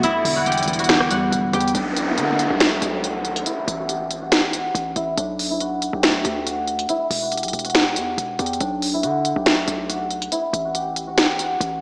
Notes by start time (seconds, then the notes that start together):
Already playing: A3 B3 D4 F#4 A4 D5 F#5
0.03 E2 D3 G3 E4 E5, closed hi-hat
0.25 E1 D3, open hi-hat
0.36 F#4 F#5
0.46 E2 G4 G5, closed hi-hat
0.52 closed hi-hat
0.58 B1, closed hi-hat
0.63 closed hi-hat
0.68 E1 E3, closed hi-hat
0.73 closed hi-hat
0.79 F#4 F#5, closed hi-hat
0.84 closed hi-hat
0.89 E2 G4 G5, finger snap, cross-stick, snare, closed hi-hat
1.00 cross-stick
1.10 E2 G3 F#4 F#5, closed hi-hat
1.32 E1 E2, closed hi-hat
1.53 E2 B3 G4 G5, closed hi-hat
1.61 closed hi-hat
1.68 closed hi-hat
1.75 B1 D4 D5, closed hi-hat, downlifter
1.97 closed hi-hat
2.08 E4 E5
2.17 D3 F#4 F#5, closed hi-hat
2.39 closed hi-hat
2.50 B1 G4 G5
2.60 A3 A4, finger snap, snare, closed hi-hat
2.81 B1 G4 G5, closed hi-hat
3.03 F#4 F#5, closed hi-hat
3.25 closed hi-hat
3.36 closed hi-hat
3.46 E4 E5, closed hi-hat
3.68 A1, closed hi-hat
3.79 F#4 F#5
3.89 G4 G5, closed hi-hat
4.11 closed hi-hat
4.21 F#4 F#5
4.32 G4 G5, finger snap, snare, closed hi-hat
4.53 F#4 F#5, closed hi-hat
4.75 A1, closed hi-hat
4.96 A1 E4 E5, closed hi-hat
5.17 B1 D4 D5, closed hi-hat
5.39 open hi-hat
5.50 E4 E5
5.60 F#4 F#5, closed hi-hat
5.82 closed hi-hat
5.93 B1 G4 G5
6.03 A3 A4, finger snap, snare, closed hi-hat
6.25 D2 G4 G5, closed hi-hat
6.46 F#4 F#5, closed hi-hat
6.68 closed hi-hat
6.79 closed hi-hat
6.89 E4 E5, closed hi-hat
7.10 E1, open hi-hat
7.22 F#4 F#5
7.32 G4 G5, closed hi-hat
7.37 closed hi-hat
7.43 B1, closed hi-hat
7.48 closed hi-hat
7.53 E1, closed hi-hat
7.59 closed hi-hat
7.65 F#4 F#5, closed hi-hat
7.70 closed hi-hat
7.75 G4 G5, finger snap, snare, closed hi-hat
7.96 E2 F#4 F#5, closed hi-hat
8.18 E1, closed hi-hat
8.39 E2 G4 G5, closed hi-hat
8.46 closed hi-hat
8.53 closed hi-hat
8.60 B1 D4 D5, closed hi-hat
8.82 open hi-hat
8.94 E4 E5
9.03 D3 F#4 F#5, closed hi-hat
9.25 closed hi-hat
9.36 B1 G4 G5
9.46 A3 A4, finger snap, snare, closed hi-hat
9.67 B1 G4 G5, closed hi-hat
9.89 F#4 F#5, closed hi-hat
10.11 closed hi-hat
10.22 closed hi-hat
10.32 E4 E5, closed hi-hat
10.53 A1, closed hi-hat
10.65 F#4 F#5
10.75 G4 G5, closed hi-hat
10.96 closed hi-hat
11.07 F#4 F#5
11.18 G4 G5, finger snap, snare, closed hi-hat
11.39 F#4 F#5, closed hi-hat
11.60 A1, closed hi-hat